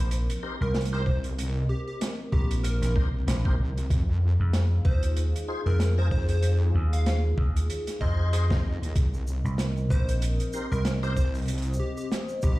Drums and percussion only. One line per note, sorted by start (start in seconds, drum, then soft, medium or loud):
0.11 closed hi-hat medium
0.30 closed hi-hat medium
0.74 snare loud
0.74 closed hi-hat soft
0.81 closed hi-hat medium
0.85 closed hi-hat medium
1.06 kick medium
1.24 closed hi-hat soft
1.39 closed hi-hat medium
2.01 snare loud
2.01 snare soft
2.01 closed hi-hat loud
2.33 kick loud
2.51 closed hi-hat medium
2.64 closed hi-hat medium
2.83 snare soft
2.83 closed hi-hat medium
2.96 kick medium
3.28 snare loud
3.28 closed hi-hat loud
3.45 kick loud
3.77 closed hi-hat medium
3.90 kick loud
3.90 closed hi-hat medium
4.53 snare loud
4.53 snare soft
4.53 closed hi-hat medium
4.85 kick loud
5.03 closed hi-hat medium
5.17 closed hi-hat medium
5.36 closed hi-hat medium
5.80 snare loud
5.80 closed hi-hat medium
6.11 kick medium
6.29 closed hi-hat medium
6.42 closed hi-hat medium
6.93 closed hi-hat medium
7.06 snare loud
7.06 snare soft
7.06 closed hi-hat medium
7.38 kick loud
7.56 closed hi-hat medium
7.70 closed hi-hat medium
7.87 snare soft
7.87 closed hi-hat medium
8.01 kick medium
8.33 closed hi-hat loud
8.50 kick loud
8.50 snare loud
8.83 closed hi-hat medium
8.96 kick loud
8.96 closed hi-hat medium
8.96 shaker medium
9.14 shaker soft
9.27 shaker medium
9.46 shaker soft
9.58 snare loud
9.58 snare soft
9.58 closed hi-hat medium
9.58 shaker medium
9.77 shaker soft
9.90 kick loud
9.90 shaker medium
10.08 closed hi-hat medium
10.08 shaker soft
10.22 closed hi-hat medium
10.22 shaker medium
10.40 closed hi-hat medium
10.40 shaker soft
10.53 shaker medium
10.72 shaker medium
10.85 snare loud
10.85 closed hi-hat medium
10.85 shaker medium
11.03 shaker soft
11.17 kick medium
11.17 shaker medium
11.35 closed hi-hat soft
11.35 shaker soft
11.38 closed hi-hat soft
11.42 closed hi-hat soft
11.45 closed hi-hat soft
11.45 shaker medium
11.48 closed hi-hat medium
11.48 closed hi-hat soft
11.53 closed hi-hat soft
11.58 closed hi-hat soft
11.62 closed hi-hat soft
11.62 shaker soft
11.73 shaker medium
11.97 shaker medium
12.12 snare loud
12.12 snare soft
12.12 closed hi-hat medium
12.12 shaker medium
12.29 shaker soft
12.42 kick loud
12.42 shaker medium